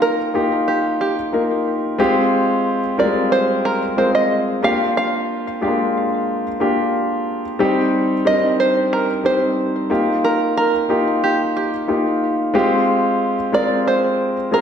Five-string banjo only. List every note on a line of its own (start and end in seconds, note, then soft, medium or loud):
0.02 0.64 A#4 medium
0.68 1.00 G4 medium
1.01 1.95 G4 medium
2.99 3.29 D5 medium
3.32 3.65 C5 medium
3.65 3.99 A#4 medium
3.98 4.14 C5 medium
4.15 4.60 D#5 medium
4.64 4.94 F5 medium
4.97 6.90 F5 medium
8.27 8.59 D#5 loud
8.60 8.93 C5 medium
8.93 9.26 A#4 medium
9.26 10.24 C5 medium
10.24 10.56 A#4 medium
10.57 11.25 A#4 medium
11.24 11.55 G4 medium
11.57 12.51 G4 medium
13.54 13.87 D5 loud
13.88 14.49 C5 medium
14.54 14.61 A#4 medium